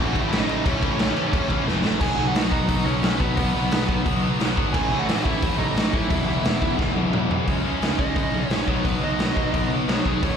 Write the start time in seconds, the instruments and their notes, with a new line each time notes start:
Already playing: overdriven electric guitar A2 E3 A3, lead electric guitar F#4 F#5
0.00 picked electric bass A1, overdriven electric guitar C#4 E4
0.12 picked electric bass A1, overdriven electric guitar A2 E3 A3 C#4 E4, kick, crash
0.21 lead electric guitar E4 E5
0.29 picked electric bass A1, overdriven electric guitar A2 E3 A3, lead electric guitar E4 E5, crash
0.34 overdriven electric guitar C#4 E4, snare
0.38 lead electric guitar D#4 D#5
0.47 overdriven electric guitar A2 E3 A3 C#4 E4, crash
0.65 picked electric bass A1, overdriven electric guitar A2 E3 A3 C#4 E4, lead electric guitar C#4 C#5, kick, crash
0.81 picked electric bass A1, overdriven electric guitar A2 E3 A3 C#4 E4, kick, crash
0.97 picked electric bass A1, overdriven electric guitar A2 E3 A3 C#4 E4, snare, crash
1.15 picked electric bass A1, overdriven electric guitar A2 E3 A3 C#4 E4, crash
1.31 picked electric bass A1, overdriven electric guitar A2 E3 A3 C#4 E4, kick, crash
1.50 overdriven electric guitar A2 E3 A3 C#4 E4, kick, crash
1.66 picked electric bass F#1, overdriven electric guitar A2 E3 A3 C#4 E4, snare
1.82 picked electric bass A1, overdriven electric guitar A2 E3 A3 C#4 E4, snare
2.00 picked electric bass B1, overdriven electric guitar B2 F#3 B3, lead electric guitar G#4 G#5, kick, crash
2.16 picked electric bass B1, overdriven electric guitar B2 F#3 B3
2.27 lead electric guitar F#4 F#5
2.34 picked electric bass B1, overdriven electric guitar B2 F#3 B3, snare, open hi-hat
2.51 picked electric bass B1, overdriven electric guitar B2 F#3 B3, lead electric guitar D#4 D#5, kick
2.69 picked electric bass B1, overdriven electric guitar B2 F#3 B3, kick, open hi-hat
2.84 picked electric bass B1, overdriven electric guitar B2 F#3 B3, lead electric guitar C#4 C#5
3.02 picked electric bass B1, overdriven electric guitar B2 F#3 B3, snare, open hi-hat
3.18 picked electric bass B2, overdriven electric guitar B2 F#3 B3, lead electric guitar B3 B4, kick
3.37 picked electric bass B1, overdriven electric guitar B2 F#3 B3, lead electric guitar B3 B4, kick, open hi-hat
3.55 picked electric bass B1, overdriven electric guitar B2 F#3 B3
3.71 picked electric bass B1, overdriven electric guitar B2 F#3 B3, snare, open hi-hat
3.89 picked electric bass B1, overdriven electric guitar B2 F#3 B3, kick
4.06 picked electric bass B1, overdriven electric guitar B2 F#3 B3, kick, open hi-hat
4.23 overdriven electric guitar B2 F#3 B3
4.39 picked electric bass B1, overdriven electric guitar B2 F#3 B3, snare, open hi-hat
4.57 picked electric bass G#1, overdriven electric guitar B2 F#3 B3, kick
4.73 picked electric bass A1, overdriven electric guitar A2 E3 A3 C#4 E4, lead electric guitar G#4 G#5, kick, crash
4.91 picked electric bass A1, overdriven electric guitar A2 E3 A3 C#4 E4
4.99 lead electric guitar F#4 F#5
5.08 picked electric bass A1, overdriven electric guitar A2 E3 A3 C#4 E4, snare, open hi-hat
5.24 picked electric bass A1, overdriven electric guitar A2 E3 A3 C#4 E4, lead electric guitar E4 E5, kick
5.42 picked electric bass A1, overdriven electric guitar A2 E3 A3 C#4 E4, kick, open hi-hat
5.58 picked electric bass A1, overdriven electric guitar A2 E3 A3 C#4 E4, lead electric guitar D#4 D#5
5.75 picked electric bass A1, overdriven electric guitar A2 E3 A3 C#4 E4, snare, open hi-hat
5.93 picked electric bass A2, overdriven electric guitar A2 E3 A3 C#4 E4, lead electric guitar E4 E5, kick
6.09 picked electric bass E1, overdriven electric guitar E2 B2 E3 G#3 B3 E4, lead electric guitar E4 E5, kick, open hi-hat
6.26 picked electric bass E1, overdriven electric guitar E2 B2 E3 G#3 B3 E4
6.44 picked electric bass E1, overdriven electric guitar E2 B2 E3 G#3 B3 E4, snare, open hi-hat
6.61 picked electric bass E1, overdriven electric guitar E2 B2 E3 G#3 B3 E4, kick
6.79 picked electric bass E1, overdriven electric guitar E2 B2 E3 G#3 B3 E4, kick, snare
6.96 overdriven electric guitar E2 B2 E3 G#3 B3 E4, high tom
7.13 picked electric bass E1, overdriven electric guitar E2 B2 E3 G#3 B3 E4, mid tom
7.30 picked electric bass E1, overdriven electric guitar E2 B2 E3 G#3 B3 E4, floor tom
7.47 picked electric bass C#2, overdriven electric guitar C#3 G#3 C#4 E4, kick, open hi-hat
7.64 picked electric bass C#2, overdriven electric guitar C#3 G#3 C#4
7.81 picked electric bass C#2, overdriven electric guitar C#3 G#3 C#4, snare, open hi-hat
7.98 picked electric bass C#2, overdriven electric guitar C#3 G#3 C#4, lead electric guitar D#5, kick
8.15 picked electric bass C#2, overdriven electric guitar C#3 G#3 C#4, kick, open hi-hat
8.33 picked electric bass B1, overdriven electric guitar C#3 G#3 C#4
8.47 picked electric bass A#1, overdriven electric guitar C#3 G#3, lead electric guitar C#5, open hi-hat
8.51 overdriven electric guitar C#4, snare
8.67 picked electric bass B1, overdriven electric guitar B2 D#3 F#3 B3 D#4, lead electric guitar C#5, kick
8.85 picked electric bass B1, overdriven electric guitar B2 F#3 B3, lead electric guitar B4, kick, open hi-hat
9.01 picked electric bass B1, overdriven electric guitar B2 F#3 B3, lead electric guitar D#5
9.19 picked electric bass B1, overdriven electric guitar B2 F#3 B3, snare, open hi-hat
9.37 overdriven electric guitar B2 F#3 B3, picked electric bass B2, kick
9.53 picked electric bass B1, overdriven electric guitar B2 F#3 B3, kick, open hi-hat
9.70 overdriven electric guitar B2 F#3 B3
9.88 picked electric bass B1, overdriven electric guitar B2 D#3 F#3 B3 D#4, lead electric guitar C#5, snare, open hi-hat
10.05 picked electric bass B1, overdriven electric guitar B2 F#3 B3, lead electric guitar G#4, kick
10.22 picked electric bass A1, overdriven electric guitar A2 E3 A3 C#4 E4, lead electric guitar C#5, kick, open hi-hat